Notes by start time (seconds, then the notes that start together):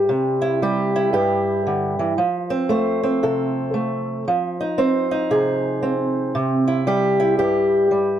Already playing: G3
0.09 C3
0.42 E4
0.62 G3 G4
0.96 E4
1.13 G2 G4
1.67 D3
1.99 E3
2.18 F3
2.50 C4
2.69 A3 C5
3.04 C4
3.23 C3 A4
3.74 A3
4.28 F3
4.61 D#4
4.78 C4 C5
5.11 D#4
5.31 C3 G#4
5.83 C4
6.35 C3
6.68 E4
6.87 G3 G4
7.20 E4
7.39 G2 G4
7.91 G3